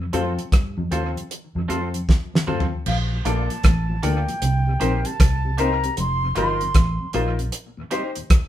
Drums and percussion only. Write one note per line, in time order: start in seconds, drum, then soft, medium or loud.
0.13 closed hi-hat medium
0.39 closed hi-hat medium
0.52 kick loud
0.52 cross-stick loud
0.52 closed hi-hat medium
0.92 closed hi-hat medium
1.17 closed hi-hat medium
1.31 closed hi-hat medium
1.70 closed hi-hat medium
1.94 closed hi-hat medium
2.09 kick loud
2.09 snare medium
2.35 snare medium
2.48 mid tom medium
2.60 floor tom medium
2.86 crash medium
3.25 closed hi-hat medium
3.50 closed hi-hat medium
3.63 kick loud
3.63 cross-stick loud
3.63 closed hi-hat medium
4.03 closed hi-hat medium
4.29 closed hi-hat medium
4.42 closed hi-hat loud
4.81 closed hi-hat medium
5.05 closed hi-hat medium
5.20 kick loud
5.20 cross-stick loud
5.20 closed hi-hat loud
5.58 closed hi-hat medium
5.84 closed hi-hat medium
5.97 closed hi-hat loud
6.36 closed hi-hat medium
6.61 closed hi-hat medium
6.74 kick loud
6.74 cross-stick loud
6.74 closed hi-hat loud
7.13 closed hi-hat medium
7.39 closed hi-hat medium
7.52 closed hi-hat loud
7.91 closed hi-hat medium
8.15 closed hi-hat medium
8.30 kick loud
8.30 cross-stick loud
8.30 closed hi-hat loud